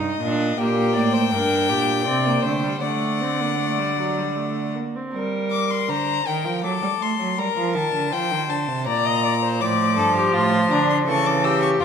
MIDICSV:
0, 0, Header, 1, 5, 480
1, 0, Start_track
1, 0, Key_signature, -2, "minor"
1, 0, Tempo, 739827
1, 375, Time_signature, 3, 2, 24, 8
1, 1338, Tempo, 763359
1, 4218, Tempo, 738007
1, 7604, End_track
2, 0, Start_track
2, 0, Title_t, "Violin"
2, 0, Program_c, 0, 40
2, 0, Note_on_c, 0, 75, 77
2, 373, Note_on_c, 0, 79, 98
2, 382, Note_off_c, 0, 75, 0
2, 1810, Note_off_c, 0, 79, 0
2, 1813, Note_on_c, 0, 78, 85
2, 3003, Note_off_c, 0, 78, 0
2, 3506, Note_on_c, 0, 86, 85
2, 3628, Note_on_c, 0, 84, 87
2, 3637, Note_off_c, 0, 86, 0
2, 3746, Note_on_c, 0, 82, 100
2, 3755, Note_off_c, 0, 84, 0
2, 3986, Note_on_c, 0, 79, 85
2, 3995, Note_off_c, 0, 82, 0
2, 4213, Note_off_c, 0, 79, 0
2, 4217, Note_on_c, 0, 86, 95
2, 4464, Note_on_c, 0, 84, 83
2, 4473, Note_off_c, 0, 86, 0
2, 4701, Note_on_c, 0, 82, 94
2, 4711, Note_off_c, 0, 84, 0
2, 4938, Note_off_c, 0, 82, 0
2, 4942, Note_on_c, 0, 81, 95
2, 5179, Note_on_c, 0, 79, 104
2, 5189, Note_off_c, 0, 81, 0
2, 5422, Note_on_c, 0, 81, 88
2, 5432, Note_off_c, 0, 79, 0
2, 5662, Note_off_c, 0, 81, 0
2, 5666, Note_on_c, 0, 82, 108
2, 6148, Note_on_c, 0, 86, 90
2, 6157, Note_off_c, 0, 82, 0
2, 6623, Note_off_c, 0, 86, 0
2, 6626, Note_on_c, 0, 81, 92
2, 6863, Note_on_c, 0, 82, 85
2, 6873, Note_off_c, 0, 81, 0
2, 6982, Note_off_c, 0, 82, 0
2, 6986, Note_on_c, 0, 84, 78
2, 7033, Note_off_c, 0, 84, 0
2, 7103, Note_on_c, 0, 85, 99
2, 7222, Note_on_c, 0, 86, 90
2, 7232, Note_off_c, 0, 85, 0
2, 7337, Note_on_c, 0, 88, 86
2, 7347, Note_off_c, 0, 86, 0
2, 7450, Note_off_c, 0, 88, 0
2, 7454, Note_on_c, 0, 85, 83
2, 7503, Note_off_c, 0, 85, 0
2, 7580, Note_on_c, 0, 86, 94
2, 7604, Note_off_c, 0, 86, 0
2, 7604, End_track
3, 0, Start_track
3, 0, Title_t, "Violin"
3, 0, Program_c, 1, 40
3, 371, Note_on_c, 1, 67, 83
3, 606, Note_on_c, 1, 74, 85
3, 616, Note_off_c, 1, 67, 0
3, 728, Note_on_c, 1, 72, 84
3, 737, Note_off_c, 1, 74, 0
3, 848, Note_off_c, 1, 72, 0
3, 852, Note_on_c, 1, 70, 94
3, 1096, Note_on_c, 1, 67, 83
3, 1106, Note_off_c, 1, 70, 0
3, 1324, Note_off_c, 1, 67, 0
3, 1328, Note_on_c, 1, 74, 89
3, 1566, Note_on_c, 1, 72, 77
3, 1576, Note_off_c, 1, 74, 0
3, 1808, Note_on_c, 1, 74, 72
3, 1817, Note_off_c, 1, 72, 0
3, 3024, Note_off_c, 1, 74, 0
3, 3270, Note_on_c, 1, 70, 71
3, 3745, Note_on_c, 1, 72, 77
3, 3754, Note_off_c, 1, 70, 0
3, 3982, Note_off_c, 1, 72, 0
3, 3987, Note_on_c, 1, 70, 66
3, 4215, Note_off_c, 1, 70, 0
3, 4219, Note_on_c, 1, 69, 67
3, 4692, Note_off_c, 1, 69, 0
3, 4703, Note_on_c, 1, 70, 78
3, 5176, Note_off_c, 1, 70, 0
3, 5179, Note_on_c, 1, 72, 81
3, 5655, Note_off_c, 1, 72, 0
3, 5668, Note_on_c, 1, 74, 81
3, 5788, Note_on_c, 1, 75, 82
3, 5798, Note_off_c, 1, 74, 0
3, 5905, Note_off_c, 1, 75, 0
3, 5909, Note_on_c, 1, 74, 78
3, 5956, Note_off_c, 1, 74, 0
3, 6022, Note_on_c, 1, 72, 76
3, 6145, Note_on_c, 1, 74, 80
3, 6155, Note_off_c, 1, 72, 0
3, 6374, Note_off_c, 1, 74, 0
3, 6378, Note_on_c, 1, 69, 97
3, 6498, Note_off_c, 1, 69, 0
3, 6502, Note_on_c, 1, 67, 93
3, 6620, Note_on_c, 1, 65, 107
3, 6630, Note_off_c, 1, 67, 0
3, 6859, Note_off_c, 1, 65, 0
3, 6863, Note_on_c, 1, 62, 95
3, 7095, Note_off_c, 1, 62, 0
3, 7099, Note_on_c, 1, 69, 95
3, 7339, Note_on_c, 1, 67, 104
3, 7349, Note_off_c, 1, 69, 0
3, 7572, Note_on_c, 1, 65, 98
3, 7582, Note_off_c, 1, 67, 0
3, 7604, Note_off_c, 1, 65, 0
3, 7604, End_track
4, 0, Start_track
4, 0, Title_t, "Viola"
4, 0, Program_c, 2, 41
4, 0, Note_on_c, 2, 63, 78
4, 136, Note_off_c, 2, 63, 0
4, 147, Note_on_c, 2, 62, 89
4, 375, Note_off_c, 2, 62, 0
4, 382, Note_on_c, 2, 58, 77
4, 846, Note_off_c, 2, 58, 0
4, 859, Note_on_c, 2, 62, 81
4, 1331, Note_off_c, 2, 62, 0
4, 1343, Note_on_c, 2, 60, 69
4, 1460, Note_on_c, 2, 58, 74
4, 1470, Note_off_c, 2, 60, 0
4, 1581, Note_on_c, 2, 57, 70
4, 1590, Note_off_c, 2, 58, 0
4, 1695, Note_off_c, 2, 57, 0
4, 1699, Note_on_c, 2, 55, 58
4, 1813, Note_off_c, 2, 55, 0
4, 1816, Note_on_c, 2, 57, 66
4, 2059, Note_on_c, 2, 60, 59
4, 2068, Note_off_c, 2, 57, 0
4, 2179, Note_on_c, 2, 58, 55
4, 2188, Note_off_c, 2, 60, 0
4, 2293, Note_off_c, 2, 58, 0
4, 2296, Note_on_c, 2, 57, 59
4, 2420, Note_on_c, 2, 55, 60
4, 2430, Note_off_c, 2, 57, 0
4, 2539, Note_off_c, 2, 55, 0
4, 2543, Note_on_c, 2, 54, 59
4, 2666, Note_on_c, 2, 55, 53
4, 2675, Note_off_c, 2, 54, 0
4, 2785, Note_on_c, 2, 57, 57
4, 2795, Note_off_c, 2, 55, 0
4, 3027, Note_on_c, 2, 58, 58
4, 3036, Note_off_c, 2, 57, 0
4, 3155, Note_on_c, 2, 60, 58
4, 3165, Note_off_c, 2, 58, 0
4, 3271, Note_off_c, 2, 60, 0
4, 6145, Note_on_c, 2, 53, 90
4, 7107, Note_on_c, 2, 52, 91
4, 7117, Note_off_c, 2, 53, 0
4, 7577, Note_off_c, 2, 52, 0
4, 7581, Note_on_c, 2, 53, 95
4, 7604, Note_off_c, 2, 53, 0
4, 7604, End_track
5, 0, Start_track
5, 0, Title_t, "Cello"
5, 0, Program_c, 3, 42
5, 0, Note_on_c, 3, 43, 78
5, 132, Note_off_c, 3, 43, 0
5, 139, Note_on_c, 3, 46, 80
5, 371, Note_off_c, 3, 46, 0
5, 377, Note_on_c, 3, 46, 88
5, 615, Note_on_c, 3, 45, 78
5, 625, Note_off_c, 3, 46, 0
5, 856, Note_on_c, 3, 43, 73
5, 865, Note_off_c, 3, 45, 0
5, 1099, Note_on_c, 3, 46, 69
5, 1109, Note_off_c, 3, 43, 0
5, 1335, Note_on_c, 3, 48, 81
5, 1344, Note_off_c, 3, 46, 0
5, 1571, Note_off_c, 3, 48, 0
5, 1574, Note_on_c, 3, 50, 77
5, 1809, Note_off_c, 3, 50, 0
5, 1816, Note_on_c, 3, 50, 74
5, 3004, Note_off_c, 3, 50, 0
5, 3270, Note_on_c, 3, 55, 79
5, 3744, Note_on_c, 3, 50, 71
5, 3753, Note_off_c, 3, 55, 0
5, 3976, Note_off_c, 3, 50, 0
5, 3979, Note_on_c, 3, 51, 69
5, 4096, Note_on_c, 3, 53, 76
5, 4106, Note_off_c, 3, 51, 0
5, 4211, Note_off_c, 3, 53, 0
5, 4214, Note_on_c, 3, 54, 79
5, 4263, Note_off_c, 3, 54, 0
5, 4335, Note_on_c, 3, 55, 75
5, 4384, Note_off_c, 3, 55, 0
5, 4455, Note_on_c, 3, 57, 71
5, 4574, Note_off_c, 3, 57, 0
5, 4578, Note_on_c, 3, 54, 75
5, 4694, Note_off_c, 3, 54, 0
5, 4698, Note_on_c, 3, 55, 81
5, 4747, Note_off_c, 3, 55, 0
5, 4820, Note_on_c, 3, 53, 81
5, 4938, Note_on_c, 3, 51, 74
5, 4947, Note_off_c, 3, 53, 0
5, 5057, Note_off_c, 3, 51, 0
5, 5061, Note_on_c, 3, 50, 69
5, 5178, Note_on_c, 3, 53, 78
5, 5187, Note_off_c, 3, 50, 0
5, 5304, Note_on_c, 3, 51, 80
5, 5314, Note_off_c, 3, 53, 0
5, 5419, Note_off_c, 3, 51, 0
5, 5423, Note_on_c, 3, 50, 71
5, 5541, Note_on_c, 3, 48, 78
5, 5551, Note_off_c, 3, 50, 0
5, 5664, Note_on_c, 3, 46, 89
5, 5674, Note_off_c, 3, 48, 0
5, 6146, Note_on_c, 3, 45, 86
5, 6156, Note_off_c, 3, 46, 0
5, 6383, Note_on_c, 3, 43, 86
5, 6393, Note_off_c, 3, 45, 0
5, 6621, Note_off_c, 3, 43, 0
5, 6625, Note_on_c, 3, 45, 88
5, 6859, Note_off_c, 3, 45, 0
5, 6867, Note_on_c, 3, 50, 86
5, 7096, Note_off_c, 3, 50, 0
5, 7100, Note_on_c, 3, 49, 92
5, 7568, Note_off_c, 3, 49, 0
5, 7582, Note_on_c, 3, 41, 93
5, 7604, Note_off_c, 3, 41, 0
5, 7604, End_track
0, 0, End_of_file